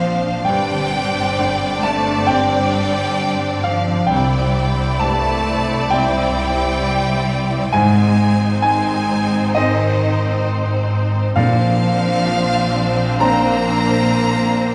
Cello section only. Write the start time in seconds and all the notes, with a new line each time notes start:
Already playing: F3
0.46 G3
1.84 A3
2.29 G3
3.65 F3
4.10 G3
5.02 A3
5.91 G3
7.73 G#3
8.64 G#3
9.57 D#3
11.37 F3
13.20 A#3